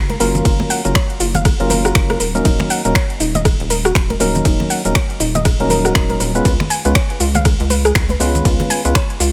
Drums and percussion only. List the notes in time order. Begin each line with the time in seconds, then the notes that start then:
0.10 closed hi-hat, high conga
0.20 open hi-hat, shaker
0.35 closed hi-hat, low conga, shaker
0.45 kick, closed hi-hat, ride, shaker
0.60 high conga, low conga
0.70 open hi-hat, shaker
0.85 closed hi-hat, shaker
0.95 finger snap, kick, closed hi-hat, ride, high conga, shaker
1.10 closed hi-hat
1.20 open hi-hat, shaker
1.35 closed hi-hat, high conga, low conga, shaker
1.45 kick, cross-stick, closed hi-hat, ride, shaker
1.60 closed hi-hat
1.70 open hi-hat, high conga, low conga, shaker
1.85 cross-stick, closed hi-hat, shaker
1.95 finger snap, kick, closed hi-hat, ride, shaker
2.10 cross-stick, closed hi-hat, high conga
2.20 open hi-hat, shaker
2.35 closed hi-hat, shaker
2.45 kick, closed hi-hat, ride, shaker
2.60 finger snap, high conga, low conga
2.70 open hi-hat, shaker
2.85 closed hi-hat, shaker
2.95 finger snap, kick, closed hi-hat, ride, high conga, shaker
3.10 closed hi-hat
3.20 open hi-hat, shaker
3.35 closed hi-hat, high conga, low conga, shaker
3.45 kick, cross-stick, closed hi-hat, ride, shaker
3.60 closed hi-hat
3.70 open hi-hat, high conga, shaker
3.85 cross-stick, closed hi-hat, shaker
3.95 finger snap, kick, closed hi-hat, ride, shaker
4.10 closed hi-hat, high conga
4.20 open hi-hat, shaker
4.35 closed hi-hat, low conga, shaker
4.45 kick, closed hi-hat, ride, shaker
4.60 high conga, low conga
4.70 open hi-hat, shaker
4.85 closed hi-hat, shaker
4.95 finger snap, kick, closed hi-hat, ride, high conga, shaker
5.10 closed hi-hat
5.20 open hi-hat, shaker
5.35 closed hi-hat, high conga, low conga, shaker
5.45 kick, cross-stick, closed hi-hat, ride, shaker
5.60 closed hi-hat
5.70 open hi-hat, high conga, low conga, shaker
5.85 cross-stick, closed hi-hat, shaker
5.95 finger snap, kick, closed hi-hat, ride, shaker
6.09 closed hi-hat, high conga
6.20 open hi-hat, shaker
6.35 closed hi-hat, shaker
6.45 kick, closed hi-hat, ride, shaker
6.60 finger snap, high conga, low conga
6.70 open hi-hat, shaker
6.85 closed hi-hat, shaker
6.95 finger snap, kick, closed hi-hat, ride, high conga, shaker
7.10 closed hi-hat
7.20 open hi-hat, shaker
7.35 closed hi-hat, high conga, low conga, shaker
7.45 kick, cross-stick, closed hi-hat, ride, shaker
7.60 closed hi-hat
7.70 open hi-hat, high conga, shaker
7.85 cross-stick, closed hi-hat, shaker
7.95 finger snap, kick, closed hi-hat, ride, shaker
8.09 closed hi-hat, high conga
8.20 open hi-hat, shaker
8.35 closed hi-hat, low conga, shaker
8.45 kick, closed hi-hat, ride, shaker
8.60 closed hi-hat, high conga, low conga
8.70 open hi-hat, shaker
8.85 closed hi-hat, shaker
8.95 finger snap, kick, closed hi-hat, ride, high conga, shaker
9.10 closed hi-hat
9.20 open hi-hat, shaker